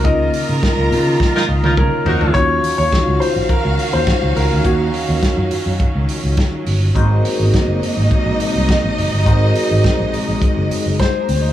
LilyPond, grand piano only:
\new Staff \with { instrumentName = "Grand piano" } { \time 4/4 \key ees \dorian \tempo 4 = 104 ees''2. bes'4 | des''8. des''8. c''8 bes'8. c''8. bes'8 | ges'2 r2 | r1 |
r2. c''4 | }